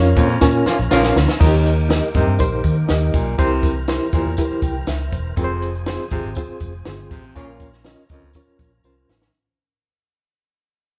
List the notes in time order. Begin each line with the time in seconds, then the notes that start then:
Already playing: F2 F3 C#4 F4 A#4 C#5 F5
0.16 F2 A#2, kick, closed hi-hat, tambourine
0.41 A#2 C#4 F4 A#4 C#5 G#5, kick, snare, tambourine
0.66 C#3 F3 A#3 F4, muted fingered electric bass stroke, snare, tambourine
0.79 A#1
0.91 A#1 C#3 F3 A#3 C#4 F4 A#4 C#5 F5, snare, tambourine
1.03 snare
1.16 D2, snare, tambourine
1.28 snare
1.40 D#2 D#3 A#3 D#4 F4 G4 A#4 D#5, kick, crash, tambourine
1.46 G4
1.66 closed hi-hat, tambourine
1.89 D#4 G4 A#4 D#5, snare, closed hi-hat, tambourine
2.14 G2 C3 D#4 G4 A#4 D#5, kick, closed hi-hat, tambourine
2.27 G2
2.39 A#1 D#4 G4 A#4 C5, kick, closed hi-hat, tambourine
2.64 D#3, kick, closed hi-hat, tambourine
2.88 D#2 D#4 G4 A#4 D#5, snare, closed hi-hat, tambourine
3.14 B1 A#2, kick, closed hi-hat, tambourine
3.38 C2 C3 E3 C4 E4 G4 A#4 C5, kick, closed hi-hat, tambourine
3.63 kick, closed hi-hat, tambourine
3.88 E4 G4 A#4 C5, snare, closed hi-hat, tambourine
4.12 E2 A#2 E4 G4 A#4 C5, kick, closed hi-hat, tambourine
4.25 E2
4.37 E4 G4 A#4 B4, kick, closed hi-hat, tambourine
4.45 C5
4.50 muted fingered electric bass stroke
4.62 C2 G5, kick, closed hi-hat, tambourine
4.87 C#2 E5, snare, closed hi-hat, tambourine
5.12 E1 C5, kick, closed hi-hat, tambourine
5.36 F1 F2 F3 C4 F4 G#4 A#4, kick, closed hi-hat, tambourine
5.44 C5
5.62 closed hi-hat, tambourine
5.75 closed hi-hat
5.86 C4 F4 G#4 C5, snare, closed hi-hat, tambourine
6.10 G#1 C3 C4 F4 G#4 C5, kick, closed hi-hat, tambourine
6.24 G#1
6.35 C4 F4 G#4 C5, kick, closed hi-hat, tambourine
6.50 muted fingered electric bass stroke
6.60 F1, kick, closed hi-hat, tambourine
6.85 G1 C4 F4 G#4 C5, snare, closed hi-hat, tambourine
7.11 A1 C3, kick, open hi-hat, tambourine
7.35 A#1 A#2 C#3 F3 A#3 C#4 F4 A#4 C#5, kick, closed hi-hat, tambourine
7.60 kick, closed hi-hat, tambourine
7.73 snare
7.84 C#4 F4 A#4 D#5, snare, closed hi-hat, tambourine
8.09 C#2 F2 C#4 F4 A#4 D#5, kick, closed hi-hat, tambourine
8.23 C#2
8.33 C#4 F4 A#4 C#5, kick, closed hi-hat, tambourine
8.47 muted fingered electric bass stroke
8.59 A#1, kick, closed hi-hat, tambourine
8.84 C2 C#4 F4 A#4 C5, tambourine
9.09 A1, snare, tambourine
9.22 snare